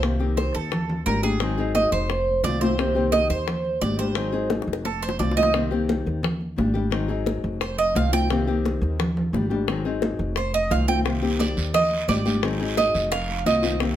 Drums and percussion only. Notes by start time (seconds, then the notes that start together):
0.03 high bongo, high conga
0.20 high bongo, high conga
0.37 high bongo, high conga
0.55 high bongo
0.72 high bongo, high conga, low conga
0.90 high conga, low conga
1.06 high bongo, low bongo, high conga
1.23 high bongo, high conga
1.40 high bongo, high conga
1.58 high bongo, high conga
1.75 high bongo, high conga
1.92 high bongo, high conga
2.10 high bongo, high conga
2.28 high conga
2.44 high bongo, low bongo, high conga
2.61 high bongo, high conga
2.79 high bongo, high conga
2.96 high bongo, high conga
3.13 high bongo, high conga
3.30 high bongo
3.48 high bongo, high conga, low conga
3.65 high conga
3.82 high bongo, low bongo, high conga
3.99 high bongo, high conga
4.15 high bongo, high conga
4.34 high bongo, high conga
4.50 high bongo, high conga
4.62 high bongo
4.68 high conga
4.73 high bongo
4.85 low bongo, high conga
5.02 high conga
5.09 low bongo
5.20 low bongo, high conga
5.31 low bongo
5.38 high conga
5.43 low bongo
5.54 high bongo, high conga
5.72 high bongo, high conga
5.89 high bongo, high conga
6.07 high bongo
6.23 high bongo, high conga, low conga
6.41 high conga
6.58 high bongo, low bongo, high conga
6.75 high bongo, high conga
6.92 high bongo, high conga
7.09 high bongo, high conga
7.26 high bongo, high conga
7.44 high bongo, high conga
7.61 high bongo, high conga
7.79 high conga
7.96 high bongo, low bongo, high conga
8.13 high bongo, high conga
8.30 high bongo
8.48 high bongo, high conga
8.65 high bongo, high conga
8.83 high bongo
9.00 high bongo, high conga, low conga
9.17 high conga, low conga
9.34 high bongo, low bongo, high conga
9.51 high bongo, high conga
9.68 high bongo, high conga
9.85 high bongo, high conga
10.02 high bongo, high conga
10.19 high bongo, high conga
10.36 high bongo, high conga
10.54 high conga
10.71 high bongo, low bongo, high conga
10.88 high bongo, high conga
11.05 high bongo, high conga, long guiro
11.22 high bongo, high conga
11.39 high bongo, high conga, short guiro
11.57 high bongo, short guiro
11.74 high bongo, high conga, low conga, long guiro
11.90 high conga
12.08 high bongo, low bongo, high conga, short guiro
12.26 high bongo, high conga, short guiro
12.43 high bongo, high conga, long guiro
12.60 high bongo, high conga
12.77 high bongo, high conga, short guiro
12.95 high bongo, high conga, short guiro
13.12 high bongo, high conga, long guiro
13.29 high conga
13.46 high bongo, low bongo, high conga, short guiro
13.63 high bongo, high conga, short guiro
13.80 high bongo, high conga, long guiro